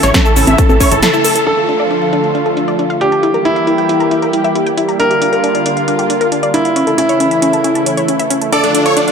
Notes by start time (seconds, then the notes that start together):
Already playing: C#3 E3 A3 E4
0.03 A1 C#5, snare, closed hi-hat, shaker
0.14 C#4 A4, kick, snare, closed hi-hat, high conga, shaker
0.25 A4 E5, shaker
0.36 A1 C#4 A4, open hi-hat, shaker
0.47 A1 E5 A5, closed hi-hat, high conga, shaker
0.58 C#4 A4, kick, closed hi-hat, shaker
0.69 A1 A4, high conga, shaker
0.80 C#4 C#5, kick, open hi-hat, shaker
0.91 A1 A4 C#5, closed hi-hat, shaker
1.02 E4 A4, snare, closed hi-hat, shaker
1.13 E4 A4, shaker
1.24 A4, open hi-hat, shaker
1.36 A4, closed hi-hat, shaker
1.47 D3 F3 A3 D4 F4 A4, closed hi-hat
1.58 A4, closed hi-hat
1.69 D4, closed hi-hat
1.80 D5, closed hi-hat
1.91 D4, closed hi-hat
2.02 F5, closed hi-hat
2.13 D4, closed hi-hat
2.24 A5, closed hi-hat
2.35 D4, closed hi-hat
2.46 A4, closed hi-hat
2.57 D4, closed hi-hat
2.68 D5, closed hi-hat
2.79 D4, closed hi-hat
2.90 F5, closed hi-hat
3.01 D4 G4, closed hi-hat
3.12 A5, closed hi-hat
3.23 E3 G3 A#3 E4 G4, closed hi-hat
3.34 A#4, closed hi-hat
3.45 E4, closed hi-hat
3.56 E5, closed hi-hat
3.67 E4, closed hi-hat
3.78 G5, closed hi-hat
3.89 E4, closed hi-hat
4.00 A#5, closed hi-hat
4.11 E4, closed hi-hat
4.22 A#4, closed hi-hat
4.33 E4, closed hi-hat
4.44 E5, closed hi-hat
4.55 E4, closed hi-hat
4.66 G5, closed hi-hat
4.77 E4, closed hi-hat
4.88 A#5, closed hi-hat
4.99 D3 A#3 D4 F4 A#4, closed hi-hat
5.11 G4, closed hi-hat
5.22 D4, closed hi-hat
5.33 A#4, closed hi-hat
5.44 D4, closed hi-hat
5.55 D5, closed hi-hat
5.66 D4, closed hi-hat
5.77 F5, closed hi-hat
5.88 D4, closed hi-hat
5.99 G4, closed hi-hat
6.10 D4, closed hi-hat
6.21 A#4, closed hi-hat
6.32 D4, closed hi-hat
6.43 D5, closed hi-hat
6.54 D4 E4, closed hi-hat
6.65 F5, closed hi-hat
6.76 C#3 E3 A3 C#4 E4, closed hi-hat
6.87 A4, closed hi-hat
6.98 C#4 E4, closed hi-hat
7.09 C#5, closed hi-hat
7.20 C#4, closed hi-hat
7.31 E5, closed hi-hat
7.42 C#4, closed hi-hat
7.53 A5, closed hi-hat
7.64 C#4, closed hi-hat
7.75 A4, closed hi-hat
7.86 C#4, closed hi-hat
7.97 C#5, closed hi-hat
8.08 C#4, closed hi-hat
8.19 E5, closed hi-hat
8.30 C#4, closed hi-hat
8.41 A5, closed hi-hat
8.52 D3 F3 D4 F4 A4 D5, closed hi-hat
8.64 D4 A4, closed hi-hat
8.75 D4, closed hi-hat
8.86 C#5 D5, closed hi-hat
8.97 D4, closed hi-hat
9.08 D4 F5, closed hi-hat